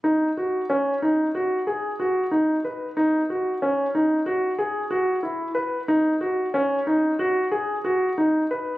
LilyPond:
\new Staff \with { instrumentName = "Grand piano" } { \time 9/8 \key ees \phrygian \tempo 4. = 61 ees'8 ges'8 des'8 ees'8 ges'8 aes'8 ges'8 ees'8 ces''8 | ees'8 ges'8 des'8 ees'8 ges'8 gis'8 ges'8 e'8 b'8 | ees'8 ges'8 des'8 ees'8 ges'8 aes'8 ges'8 ees'8 ces''8 | }